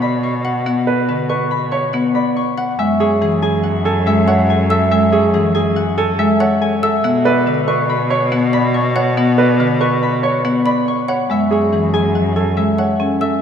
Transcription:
Already playing: B2 B4 F#5 C#6
0.02 D5 B5
0.23 C#6
0.45 F#5
0.66 B3 F#5
0.87 B4
1.08 D3 B4
1.29 B4 C#6
1.51 B5
1.71 C#5 C#6
1.93 B3 F#5
2.15 D5 B5
2.36 C#6
2.57 F#5
2.79 F#2 G#3 E5
3.00 G#4 C#5
3.21 E3 G#4
3.42 G#4 G#5
3.63 F#5
3.85 A4 G#5
4.06 G#3 E5
4.28 C#5 F#5
4.50 G#5
4.70 A4 E5 E6
4.91 G#3 E5
5.12 G#4 C#5
5.34 E3 G#4
5.55 G#4 G#5
5.76 F#5
5.98 A4 G#5
6.19 G#3 E5
6.40 C#5 F#5
6.62 G#5
6.83 A4 E5 E6
7.04 B2 B3 F#5
7.25 B4 D5
7.46 D3 B4
7.68 B4 C#6
7.89 B5
8.10 C#5 C#6
8.32 B3 F#5
8.53 D5 B5
8.74 C#6
8.96 C#5 F#5
9.17 B3 F#5
9.38 B4 D5
9.60 D3 B4
9.81 B4 C#6
10.03 B5
10.23 C#5 C#6
10.45 B3 F#5
10.66 D5 B5
10.88 C#6
11.08 C#5 F#5
11.29 F#2 G#3 E5
11.51 G#4 C#5
11.72 E3 G#4
11.93 G#4 G#5
12.15 F#5
12.36 A4 G#5
12.57 G#3 E5
12.79 C#5 F#5
13.00 C#4 G#5
13.21 A4 E5 E6

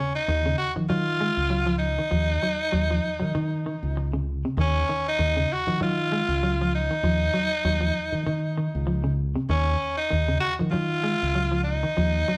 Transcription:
Already playing: C#3 C#4
0.15 D#4
0.28 D#2 D#3
0.46 C#3
0.58 F#4
0.76 D#3 F3
0.89 D#3 F#3 F4
1.21 G#3
1.37 C#2
1.50 F#3
1.66 F3
1.78 D#4
1.99 D#3
2.11 D#2 F3
2.43 F#3
2.72 D#2 F#3
2.91 F3
3.20 D#3 F#3
3.35 D#3
3.66 D#3
3.83 C#2
3.97 muted clean electric guitar stroke
4.13 C#3
4.45 C3
4.57 D#2 D#3 C#4
4.89 D#3
5.08 D#4
5.19 D#2 D#3
5.37 C#3
5.52 F#4
5.67 D#3 F3
5.81 D#3 F#3 F4
6.12 G#3
6.28 C#2
6.43 F#3
6.61 F3
6.75 D#4
6.91 D#3
7.03 D#2 F3
7.34 F#3
7.65 D#2 F#3
7.81 F3
8.12 D#3
8.26 D#3
8.58 D#3
8.75 C#2
8.87 F3
9.04 C#3
9.35 C3
9.49 D#2 D#3 C#4
9.97 D#4
10.10 D#2 D#3
10.28 C#3
10.40 F#4
10.59 D#3 F3
10.71 D#3 F#3 F4
11.03 G#3
11.22 C#2
11.35 F#3
11.52 F3
11.64 D#4
11.83 D#3
11.97 D#2 F3
12.28 F#3

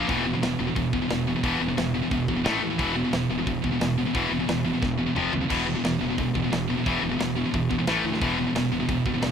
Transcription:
0.08 E1 E2 B2 E3, kick, open hi-hat
0.25 E2 B2
0.33 E2 B2
0.42 E1 E2 B2, snare, open hi-hat
0.59 E1 E2 B2
0.67 E2 B2
0.75 E1 E2 B2, kick, open hi-hat
0.93 E1 E2 B2, kick
1.02 E2 B2
1.10 E1 E2 B2, snare, open hi-hat
1.28 E2 B2
1.36 E2 B2
1.43 E1 E2 B2 E3, kick, open hi-hat
1.61 E1 E2 B2
1.68 E2 B2
1.77 E1 E2 B2, snare, open hi-hat
1.94 E2 B2
2.03 E2 B2
2.11 E1 E2 B2, kick, open hi-hat
2.28 E2 B2, kick
2.36 E2 B2
2.44 A1 A2 E3 A3, snare, open hi-hat
2.61 D#2 A2 E3
2.70 A2 E3
2.78 E1 E2 B2 E3, kick, open hi-hat
2.96 E2 B2
3.04 E2 B2
3.13 E1 E2 B2, snare, open hi-hat
3.29 E1 E2 B2
3.38 E2 B2
3.47 E1 E2 B2, kick, open hi-hat
3.64 E1 E2 B2, kick
3.72 E2 B2
3.80 E1 E2 B2, snare, open hi-hat
3.98 E2 B2
4.06 E2 B2
4.15 E1 E2 B2 E3, kick, open hi-hat
4.32 E1 E2 B2
4.40 E2 B2
4.48 E1 E2 B2, snare, open hi-hat
4.64 E2 B2
4.73 E2 B2
4.82 E1 E2 B2, kick, snare
4.98 E2 B2
5.07 E2 B2
5.15 F1 F2 C3 F3, mid tom
5.33 D#2 F2 C3, floor tom
5.41 F2 C3
5.49 E1 E2 B2 E3, kick, open hi-hat, crash
5.67 E2 B2
5.75 E2 B2
5.84 E1 E2 B2, snare, open hi-hat
6.01 E1 E2 B2
6.10 E2 B2
6.18 E1 E2 B2, kick, open hi-hat
6.35 E1 E2 B2, kick
6.44 E2 B2
6.52 E1 E2 B2, snare, open hi-hat
6.70 E2 B2
6.77 E2 B2
6.86 E1 E2 B2 E3, kick, open hi-hat
7.03 E1 E2 B2
7.11 E2 B2
7.19 E1 E2 B2, snare, open hi-hat
7.37 E2 B2
7.45 E2 B2
7.54 E1 E2 B2, kick, open hi-hat
7.70 E2 B2, kick
7.78 E2 B2
7.87 A1 A2 E3 A3, snare, open hi-hat
8.04 D2 A2 E3
8.13 A2 E3, snare
8.21 E1 E2 B2 E3, kick, open hi-hat
8.38 E2 B2
8.47 E2 B2
8.54 E1 E2 B2, snare, open hi-hat
8.71 E1 E2 B2
8.80 E2 B2
8.88 E1 E2 B2, kick, open hi-hat
9.06 E1 E2 B2, kick
9.13 E2 B2
9.22 E1 E2 B2, snare, open hi-hat

